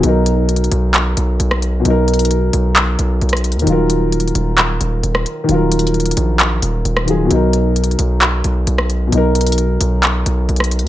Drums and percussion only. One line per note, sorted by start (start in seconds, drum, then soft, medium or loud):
0.03 closed hi-hat medium
0.26 closed hi-hat medium
0.49 closed hi-hat medium
0.56 closed hi-hat medium
0.64 closed hi-hat soft
0.72 closed hi-hat medium
0.94 clap loud
0.94 closed hi-hat medium
1.17 closed hi-hat medium
1.40 closed hi-hat medium
1.51 cross-stick loud
1.62 closed hi-hat medium
1.85 closed hi-hat medium
2.08 closed hi-hat medium
2.14 closed hi-hat medium
2.19 closed hi-hat medium
2.25 closed hi-hat medium
2.31 closed hi-hat medium
2.53 closed hi-hat medium
2.76 clap loud
2.76 closed hi-hat medium
2.99 closed hi-hat medium
3.21 closed hi-hat soft
3.29 cross-stick loud
3.29 closed hi-hat medium
3.37 closed hi-hat medium
3.44 closed hi-hat medium
3.44 open hi-hat medium
3.52 closed hi-hat medium
3.59 closed hi-hat soft
3.67 closed hi-hat medium
3.90 closed hi-hat medium
4.12 closed hi-hat medium
4.20 closed hi-hat medium
4.28 closed hi-hat soft
4.35 closed hi-hat medium
4.58 clap loud
4.58 closed hi-hat medium
4.81 closed hi-hat medium
5.03 closed hi-hat medium
5.15 cross-stick loud
5.26 closed hi-hat medium
5.49 closed hi-hat medium
5.72 closed hi-hat medium
5.79 closed hi-hat medium
5.87 closed hi-hat soft
5.94 closed hi-hat soft
6.00 closed hi-hat medium
6.06 closed hi-hat medium
6.11 closed hi-hat medium
6.17 closed hi-hat medium
6.40 clap loud
6.40 closed hi-hat medium
6.62 closed hi-hat medium
6.85 closed hi-hat medium
6.97 cross-stick loud
7.08 closed hi-hat medium
7.31 closed hi-hat medium
7.53 closed hi-hat medium
7.76 closed hi-hat medium
7.84 closed hi-hat medium
7.91 closed hi-hat soft
7.99 closed hi-hat medium
8.22 clap loud
8.22 closed hi-hat medium
8.44 closed hi-hat medium
8.67 closed hi-hat medium
8.78 cross-stick loud
8.90 closed hi-hat medium
9.12 closed hi-hat medium
9.35 closed hi-hat medium
9.41 closed hi-hat medium
9.46 closed hi-hat medium
9.52 closed hi-hat medium
9.58 closed hi-hat medium
9.81 closed hi-hat medium
10.03 clap loud
10.03 closed hi-hat medium
10.26 closed hi-hat medium
10.49 closed hi-hat soft
10.56 cross-stick medium
10.56 closed hi-hat medium
10.64 closed hi-hat medium
10.71 closed hi-hat medium
10.71 open hi-hat medium
10.79 closed hi-hat medium